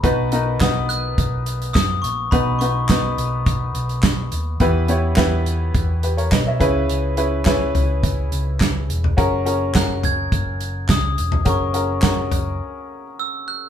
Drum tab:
HH |x-x-x-x-x-xxx-x-|x-x-x-x-x-xxx-x-|x-x-x-x-x-xxx-x-|x-x-x-x-x-x-x-x-|
CP |----x-------x---|----x-------x---|----x-------x---|----x-------x---|
SD |----o-------o---|----o-------o---|----o-------o---|----o-------o---|
FT |----------------|----------------|----------------|------o--------o|
BD |o---o---o---o---|o---o---o---o---|o---o---o---o-o-|----o---o---o---|

HH |x-x-x-x-x-x-x-x-|x-x-x-x---------|
CP |----x-------x---|----x-----------|
SD |----o-------o---|----o-----------|
FT |------o--------o|------o---------|
BD |o---o---o---o---|o---o-----------|